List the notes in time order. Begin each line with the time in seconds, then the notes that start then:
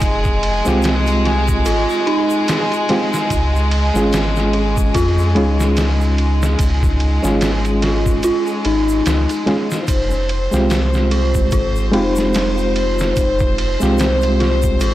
Already playing: G#3 C4 D#4 F4 G4
0.00 F1, kick, ride, shaker
0.24 kick, shaker
0.43 ride
0.65 C2 G#3 C4 F4 G4, snare, shaker
0.82 snare, ride, shaker
1.07 ride, shaker
1.25 F4, snare, ride
1.48 kick, shaker
1.65 G#1 F4, ride, shaker
1.89 shaker
2.07 D#4, ride
2.30 shaker
2.48 snare, ride, shaker
2.72 ride, shaker
2.89 G#3 C4 F4 G4, snare, ride
3.14 snare, shaker
3.30 C#2, kick, ride, shaker
3.56 shaker
3.71 ride
3.94 G#1 G#3 C#4 F4 G#4, snare, shaker
4.13 snare, open hi-hat, shaker
4.36 snare, shaker
4.53 F4, ride
4.77 kick, shaker
4.94 F2 F4, kick, ride, shaker
5.18 shaker
5.35 C#2 G#3 C#4 D#4 F4 G#4, ride
5.60 snare, shaker
5.77 snare, ride, shaker
6.01 shaker
6.18 ride
6.43 snare, shaker
6.59 C#2, kick, ride, shaker
6.83 kick, shaker
7.00 ride
7.22 G#1 G#3 C#4 F4 G#4, snare, shaker
7.41 snare, ride, shaker
7.65 ride, shaker
7.82 F4, snare, ride
8.06 kick, shaker
8.23 F4, ride, shaker
8.47 shaker
8.65 G#1 D#4, ride
8.89 shaker
9.06 C#2, snare, ride, shaker
9.29 ride, shaker
9.46 G#3 C#4 F4 G#4, snare, ride
9.71 snare, shaker
9.88 F1 C5, kick, ride, shaker
10.10 shaker
10.29 ride
10.51 C2 G#3 C4 F4 G4, snare, shaker
10.70 snare, open hi-hat, shaker
10.93 snare, shaker
11.11 F4, ride
11.34 kick, shaker
11.51 G#1 F4, kick, ride, shaker
11.76 shaker
11.92 F1 G#3 C4 D#4 F4 G4, ride
12.16 snare, shaker
12.34 snare, ride, shaker
12.58 shaker
12.76 ride
12.99 snare, shaker
13.16 F1, kick, ride, shaker
13.39 kick, shaker
13.58 ride
13.80 C2 G#3 C4 F4 G4, snare, shaker
13.98 snare, ride, shaker
14.21 ride, shaker
14.40 F4, snare, ride
14.62 kick, shaker
14.80 G#1 F4, ride, shaker